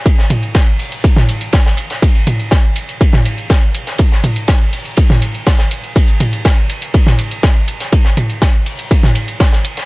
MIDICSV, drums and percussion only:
0, 0, Header, 1, 2, 480
1, 0, Start_track
1, 0, Tempo, 491803
1, 56, Time_signature, 4, 2, 24, 8
1, 9617, End_track
2, 0, Start_track
2, 0, Title_t, "Drums"
2, 56, Note_on_c, 9, 36, 119
2, 56, Note_on_c, 9, 42, 51
2, 61, Note_on_c, 9, 51, 83
2, 153, Note_off_c, 9, 36, 0
2, 153, Note_off_c, 9, 42, 0
2, 159, Note_off_c, 9, 51, 0
2, 181, Note_on_c, 9, 38, 45
2, 278, Note_off_c, 9, 38, 0
2, 291, Note_on_c, 9, 51, 63
2, 296, Note_on_c, 9, 42, 72
2, 296, Note_on_c, 9, 45, 80
2, 388, Note_off_c, 9, 51, 0
2, 393, Note_off_c, 9, 42, 0
2, 393, Note_off_c, 9, 45, 0
2, 417, Note_on_c, 9, 42, 53
2, 515, Note_off_c, 9, 42, 0
2, 532, Note_on_c, 9, 51, 91
2, 535, Note_on_c, 9, 38, 111
2, 536, Note_on_c, 9, 36, 118
2, 536, Note_on_c, 9, 42, 52
2, 629, Note_off_c, 9, 51, 0
2, 633, Note_off_c, 9, 36, 0
2, 633, Note_off_c, 9, 38, 0
2, 633, Note_off_c, 9, 42, 0
2, 775, Note_on_c, 9, 46, 76
2, 776, Note_on_c, 9, 42, 73
2, 873, Note_off_c, 9, 42, 0
2, 873, Note_off_c, 9, 46, 0
2, 897, Note_on_c, 9, 42, 51
2, 995, Note_off_c, 9, 42, 0
2, 1016, Note_on_c, 9, 36, 119
2, 1016, Note_on_c, 9, 42, 54
2, 1020, Note_on_c, 9, 51, 82
2, 1113, Note_off_c, 9, 36, 0
2, 1113, Note_off_c, 9, 42, 0
2, 1117, Note_off_c, 9, 51, 0
2, 1137, Note_on_c, 9, 45, 98
2, 1140, Note_on_c, 9, 38, 42
2, 1235, Note_off_c, 9, 45, 0
2, 1237, Note_off_c, 9, 38, 0
2, 1256, Note_on_c, 9, 42, 71
2, 1259, Note_on_c, 9, 51, 67
2, 1353, Note_off_c, 9, 42, 0
2, 1357, Note_off_c, 9, 51, 0
2, 1377, Note_on_c, 9, 42, 52
2, 1475, Note_off_c, 9, 42, 0
2, 1489, Note_on_c, 9, 51, 84
2, 1496, Note_on_c, 9, 36, 115
2, 1496, Note_on_c, 9, 42, 53
2, 1500, Note_on_c, 9, 38, 116
2, 1587, Note_off_c, 9, 51, 0
2, 1593, Note_off_c, 9, 36, 0
2, 1593, Note_off_c, 9, 42, 0
2, 1597, Note_off_c, 9, 38, 0
2, 1622, Note_on_c, 9, 38, 50
2, 1720, Note_off_c, 9, 38, 0
2, 1728, Note_on_c, 9, 51, 69
2, 1736, Note_on_c, 9, 42, 73
2, 1826, Note_off_c, 9, 51, 0
2, 1833, Note_off_c, 9, 42, 0
2, 1857, Note_on_c, 9, 42, 51
2, 1861, Note_on_c, 9, 38, 46
2, 1955, Note_off_c, 9, 42, 0
2, 1958, Note_off_c, 9, 38, 0
2, 1976, Note_on_c, 9, 36, 112
2, 1976, Note_on_c, 9, 42, 53
2, 1978, Note_on_c, 9, 51, 87
2, 2073, Note_off_c, 9, 36, 0
2, 2073, Note_off_c, 9, 42, 0
2, 2076, Note_off_c, 9, 51, 0
2, 2099, Note_on_c, 9, 51, 44
2, 2196, Note_off_c, 9, 51, 0
2, 2215, Note_on_c, 9, 51, 65
2, 2216, Note_on_c, 9, 42, 76
2, 2216, Note_on_c, 9, 45, 80
2, 2312, Note_off_c, 9, 51, 0
2, 2313, Note_off_c, 9, 42, 0
2, 2313, Note_off_c, 9, 45, 0
2, 2338, Note_on_c, 9, 42, 55
2, 2435, Note_off_c, 9, 42, 0
2, 2451, Note_on_c, 9, 38, 110
2, 2456, Note_on_c, 9, 36, 111
2, 2456, Note_on_c, 9, 42, 53
2, 2458, Note_on_c, 9, 51, 79
2, 2549, Note_off_c, 9, 38, 0
2, 2553, Note_off_c, 9, 36, 0
2, 2554, Note_off_c, 9, 42, 0
2, 2556, Note_off_c, 9, 51, 0
2, 2690, Note_on_c, 9, 51, 66
2, 2696, Note_on_c, 9, 42, 77
2, 2787, Note_off_c, 9, 51, 0
2, 2794, Note_off_c, 9, 42, 0
2, 2817, Note_on_c, 9, 51, 41
2, 2818, Note_on_c, 9, 42, 54
2, 2915, Note_off_c, 9, 42, 0
2, 2915, Note_off_c, 9, 51, 0
2, 2936, Note_on_c, 9, 36, 115
2, 2936, Note_on_c, 9, 42, 54
2, 2941, Note_on_c, 9, 51, 79
2, 3034, Note_off_c, 9, 36, 0
2, 3034, Note_off_c, 9, 42, 0
2, 3038, Note_off_c, 9, 51, 0
2, 3053, Note_on_c, 9, 38, 42
2, 3058, Note_on_c, 9, 45, 94
2, 3150, Note_off_c, 9, 38, 0
2, 3155, Note_off_c, 9, 45, 0
2, 3176, Note_on_c, 9, 42, 74
2, 3178, Note_on_c, 9, 51, 69
2, 3273, Note_off_c, 9, 42, 0
2, 3276, Note_off_c, 9, 51, 0
2, 3298, Note_on_c, 9, 42, 55
2, 3395, Note_off_c, 9, 42, 0
2, 3412, Note_on_c, 9, 51, 88
2, 3416, Note_on_c, 9, 36, 110
2, 3416, Note_on_c, 9, 42, 55
2, 3421, Note_on_c, 9, 38, 111
2, 3510, Note_off_c, 9, 51, 0
2, 3513, Note_off_c, 9, 36, 0
2, 3514, Note_off_c, 9, 42, 0
2, 3518, Note_off_c, 9, 38, 0
2, 3656, Note_on_c, 9, 42, 79
2, 3657, Note_on_c, 9, 51, 60
2, 3754, Note_off_c, 9, 42, 0
2, 3754, Note_off_c, 9, 51, 0
2, 3778, Note_on_c, 9, 42, 53
2, 3779, Note_on_c, 9, 38, 41
2, 3876, Note_off_c, 9, 38, 0
2, 3876, Note_off_c, 9, 42, 0
2, 3887, Note_on_c, 9, 51, 83
2, 3896, Note_on_c, 9, 36, 110
2, 3896, Note_on_c, 9, 42, 57
2, 3985, Note_off_c, 9, 51, 0
2, 3993, Note_off_c, 9, 36, 0
2, 3994, Note_off_c, 9, 42, 0
2, 4022, Note_on_c, 9, 38, 39
2, 4120, Note_off_c, 9, 38, 0
2, 4136, Note_on_c, 9, 42, 79
2, 4136, Note_on_c, 9, 45, 78
2, 4136, Note_on_c, 9, 51, 59
2, 4233, Note_off_c, 9, 42, 0
2, 4233, Note_off_c, 9, 45, 0
2, 4233, Note_off_c, 9, 51, 0
2, 4257, Note_on_c, 9, 42, 55
2, 4355, Note_off_c, 9, 42, 0
2, 4371, Note_on_c, 9, 51, 89
2, 4373, Note_on_c, 9, 38, 114
2, 4376, Note_on_c, 9, 36, 111
2, 4376, Note_on_c, 9, 42, 56
2, 4469, Note_off_c, 9, 51, 0
2, 4471, Note_off_c, 9, 38, 0
2, 4473, Note_off_c, 9, 36, 0
2, 4474, Note_off_c, 9, 42, 0
2, 4616, Note_on_c, 9, 42, 79
2, 4616, Note_on_c, 9, 46, 71
2, 4713, Note_off_c, 9, 42, 0
2, 4714, Note_off_c, 9, 46, 0
2, 4737, Note_on_c, 9, 42, 56
2, 4835, Note_off_c, 9, 42, 0
2, 4847, Note_on_c, 9, 51, 88
2, 4856, Note_on_c, 9, 36, 111
2, 4856, Note_on_c, 9, 42, 56
2, 4945, Note_off_c, 9, 51, 0
2, 4953, Note_off_c, 9, 36, 0
2, 4953, Note_off_c, 9, 42, 0
2, 4977, Note_on_c, 9, 45, 95
2, 4984, Note_on_c, 9, 38, 41
2, 5075, Note_off_c, 9, 45, 0
2, 5081, Note_off_c, 9, 38, 0
2, 5095, Note_on_c, 9, 42, 79
2, 5098, Note_on_c, 9, 51, 66
2, 5193, Note_off_c, 9, 42, 0
2, 5196, Note_off_c, 9, 51, 0
2, 5217, Note_on_c, 9, 42, 57
2, 5315, Note_off_c, 9, 42, 0
2, 5334, Note_on_c, 9, 51, 93
2, 5336, Note_on_c, 9, 36, 110
2, 5336, Note_on_c, 9, 42, 57
2, 5338, Note_on_c, 9, 38, 127
2, 5431, Note_off_c, 9, 51, 0
2, 5433, Note_off_c, 9, 36, 0
2, 5433, Note_off_c, 9, 42, 0
2, 5436, Note_off_c, 9, 38, 0
2, 5451, Note_on_c, 9, 38, 51
2, 5549, Note_off_c, 9, 38, 0
2, 5575, Note_on_c, 9, 42, 81
2, 5673, Note_off_c, 9, 42, 0
2, 5697, Note_on_c, 9, 42, 56
2, 5794, Note_off_c, 9, 42, 0
2, 5815, Note_on_c, 9, 42, 59
2, 5816, Note_on_c, 9, 36, 114
2, 5824, Note_on_c, 9, 51, 84
2, 5913, Note_off_c, 9, 36, 0
2, 5913, Note_off_c, 9, 42, 0
2, 5922, Note_off_c, 9, 51, 0
2, 5933, Note_on_c, 9, 51, 45
2, 6031, Note_off_c, 9, 51, 0
2, 6052, Note_on_c, 9, 51, 65
2, 6055, Note_on_c, 9, 42, 81
2, 6055, Note_on_c, 9, 45, 76
2, 6150, Note_off_c, 9, 51, 0
2, 6153, Note_off_c, 9, 42, 0
2, 6153, Note_off_c, 9, 45, 0
2, 6177, Note_on_c, 9, 42, 56
2, 6274, Note_off_c, 9, 42, 0
2, 6295, Note_on_c, 9, 42, 59
2, 6296, Note_on_c, 9, 36, 111
2, 6297, Note_on_c, 9, 51, 96
2, 6303, Note_on_c, 9, 38, 109
2, 6393, Note_off_c, 9, 36, 0
2, 6393, Note_off_c, 9, 42, 0
2, 6395, Note_off_c, 9, 51, 0
2, 6400, Note_off_c, 9, 38, 0
2, 6535, Note_on_c, 9, 42, 79
2, 6536, Note_on_c, 9, 51, 64
2, 6633, Note_off_c, 9, 42, 0
2, 6633, Note_off_c, 9, 51, 0
2, 6657, Note_on_c, 9, 42, 59
2, 6657, Note_on_c, 9, 51, 45
2, 6755, Note_off_c, 9, 42, 0
2, 6755, Note_off_c, 9, 51, 0
2, 6772, Note_on_c, 9, 51, 86
2, 6775, Note_on_c, 9, 42, 58
2, 6776, Note_on_c, 9, 36, 113
2, 6869, Note_off_c, 9, 51, 0
2, 6873, Note_off_c, 9, 36, 0
2, 6873, Note_off_c, 9, 42, 0
2, 6897, Note_on_c, 9, 45, 90
2, 6900, Note_on_c, 9, 38, 46
2, 6994, Note_off_c, 9, 45, 0
2, 6998, Note_off_c, 9, 38, 0
2, 7015, Note_on_c, 9, 42, 81
2, 7021, Note_on_c, 9, 51, 64
2, 7113, Note_off_c, 9, 42, 0
2, 7119, Note_off_c, 9, 51, 0
2, 7137, Note_on_c, 9, 42, 58
2, 7235, Note_off_c, 9, 42, 0
2, 7254, Note_on_c, 9, 38, 122
2, 7255, Note_on_c, 9, 42, 58
2, 7255, Note_on_c, 9, 51, 94
2, 7256, Note_on_c, 9, 36, 112
2, 7352, Note_off_c, 9, 38, 0
2, 7352, Note_off_c, 9, 51, 0
2, 7353, Note_off_c, 9, 36, 0
2, 7353, Note_off_c, 9, 42, 0
2, 7491, Note_on_c, 9, 51, 69
2, 7495, Note_on_c, 9, 42, 80
2, 7589, Note_off_c, 9, 51, 0
2, 7593, Note_off_c, 9, 42, 0
2, 7617, Note_on_c, 9, 38, 36
2, 7617, Note_on_c, 9, 42, 57
2, 7715, Note_off_c, 9, 38, 0
2, 7715, Note_off_c, 9, 42, 0
2, 7732, Note_on_c, 9, 51, 81
2, 7735, Note_on_c, 9, 42, 58
2, 7736, Note_on_c, 9, 36, 115
2, 7830, Note_off_c, 9, 51, 0
2, 7833, Note_off_c, 9, 36, 0
2, 7833, Note_off_c, 9, 42, 0
2, 7854, Note_on_c, 9, 38, 43
2, 7952, Note_off_c, 9, 38, 0
2, 7976, Note_on_c, 9, 42, 104
2, 7976, Note_on_c, 9, 45, 72
2, 7977, Note_on_c, 9, 51, 59
2, 8073, Note_off_c, 9, 42, 0
2, 8073, Note_off_c, 9, 45, 0
2, 8074, Note_off_c, 9, 51, 0
2, 8097, Note_on_c, 9, 42, 57
2, 8195, Note_off_c, 9, 42, 0
2, 8215, Note_on_c, 9, 38, 108
2, 8215, Note_on_c, 9, 42, 59
2, 8216, Note_on_c, 9, 36, 117
2, 8217, Note_on_c, 9, 51, 80
2, 8313, Note_off_c, 9, 36, 0
2, 8313, Note_off_c, 9, 38, 0
2, 8313, Note_off_c, 9, 42, 0
2, 8315, Note_off_c, 9, 51, 0
2, 8455, Note_on_c, 9, 42, 101
2, 8458, Note_on_c, 9, 46, 78
2, 8553, Note_off_c, 9, 42, 0
2, 8556, Note_off_c, 9, 46, 0
2, 8577, Note_on_c, 9, 42, 57
2, 8675, Note_off_c, 9, 42, 0
2, 8696, Note_on_c, 9, 36, 120
2, 8696, Note_on_c, 9, 42, 58
2, 8696, Note_on_c, 9, 51, 90
2, 8793, Note_off_c, 9, 36, 0
2, 8793, Note_off_c, 9, 42, 0
2, 8794, Note_off_c, 9, 51, 0
2, 8816, Note_on_c, 9, 38, 39
2, 8817, Note_on_c, 9, 45, 89
2, 8914, Note_off_c, 9, 38, 0
2, 8915, Note_off_c, 9, 45, 0
2, 8932, Note_on_c, 9, 51, 73
2, 8935, Note_on_c, 9, 42, 102
2, 9029, Note_off_c, 9, 51, 0
2, 9033, Note_off_c, 9, 42, 0
2, 9057, Note_on_c, 9, 42, 56
2, 9155, Note_off_c, 9, 42, 0
2, 9173, Note_on_c, 9, 51, 92
2, 9176, Note_on_c, 9, 36, 116
2, 9176, Note_on_c, 9, 42, 57
2, 9180, Note_on_c, 9, 38, 109
2, 9271, Note_off_c, 9, 51, 0
2, 9273, Note_off_c, 9, 36, 0
2, 9273, Note_off_c, 9, 42, 0
2, 9277, Note_off_c, 9, 38, 0
2, 9297, Note_on_c, 9, 38, 50
2, 9395, Note_off_c, 9, 38, 0
2, 9416, Note_on_c, 9, 42, 103
2, 9420, Note_on_c, 9, 51, 61
2, 9513, Note_off_c, 9, 42, 0
2, 9517, Note_off_c, 9, 51, 0
2, 9537, Note_on_c, 9, 42, 56
2, 9540, Note_on_c, 9, 38, 47
2, 9617, Note_off_c, 9, 38, 0
2, 9617, Note_off_c, 9, 42, 0
2, 9617, End_track
0, 0, End_of_file